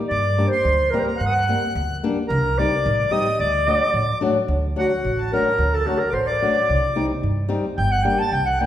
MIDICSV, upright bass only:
0, 0, Header, 1, 2, 480
1, 0, Start_track
1, 0, Tempo, 548446
1, 89, Time_signature, 2, 2, 24, 8
1, 7581, End_track
2, 0, Start_track
2, 0, Title_t, "Upright bass"
2, 0, Program_c, 0, 32
2, 97, Note_on_c, 0, 43, 94
2, 383, Note_off_c, 0, 43, 0
2, 566, Note_on_c, 0, 38, 90
2, 712, Note_off_c, 0, 38, 0
2, 1055, Note_on_c, 0, 43, 87
2, 1342, Note_off_c, 0, 43, 0
2, 1535, Note_on_c, 0, 38, 91
2, 1678, Note_off_c, 0, 38, 0
2, 2015, Note_on_c, 0, 36, 102
2, 2303, Note_off_c, 0, 36, 0
2, 2500, Note_on_c, 0, 33, 97
2, 2642, Note_off_c, 0, 33, 0
2, 2973, Note_on_c, 0, 38, 88
2, 3262, Note_off_c, 0, 38, 0
2, 3446, Note_on_c, 0, 33, 88
2, 3592, Note_off_c, 0, 33, 0
2, 3923, Note_on_c, 0, 38, 94
2, 4215, Note_off_c, 0, 38, 0
2, 4415, Note_on_c, 0, 33, 83
2, 4703, Note_off_c, 0, 33, 0
2, 4888, Note_on_c, 0, 38, 89
2, 5178, Note_off_c, 0, 38, 0
2, 5361, Note_on_c, 0, 33, 81
2, 5653, Note_off_c, 0, 33, 0
2, 5858, Note_on_c, 0, 36, 87
2, 6145, Note_off_c, 0, 36, 0
2, 6331, Note_on_c, 0, 43, 82
2, 6619, Note_off_c, 0, 43, 0
2, 6808, Note_on_c, 0, 31, 89
2, 7097, Note_off_c, 0, 31, 0
2, 7280, Note_on_c, 0, 36, 87
2, 7571, Note_off_c, 0, 36, 0
2, 7581, End_track
0, 0, End_of_file